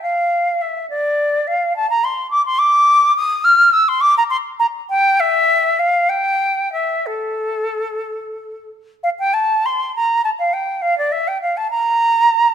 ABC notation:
X:1
M:6/8
L:1/16
Q:3/8=68
K:Dm
V:1 name="Flute"
f4 e2 d4 f2 | a b c'2 d' c' d'4 _e'2 | f'2 e' c' d' b c'2 b2 g2 | e4 f2 g4 e2 |
A8- A2 z2 | f g a2 c'2 b2 a f g2 | f d e g f a b6 |]